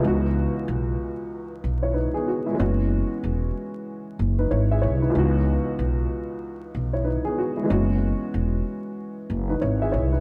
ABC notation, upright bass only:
X:1
M:4/4
L:1/16
Q:"Swing 16ths" 1/4=94
K:C#m
V:1 name="Upright bass" clef=bass
C,,3 z B,,,2 z4 B,,,3 z3 | F,,,3 z E,,,2 z4 F,,,2 G,,,2 ^B,,,2 | C,,3 z B,,,2 z4 B,,,3 z3 | F,,,3 z E,,,2 z4 F,,,2 G,,,2 ^B,,,2 |]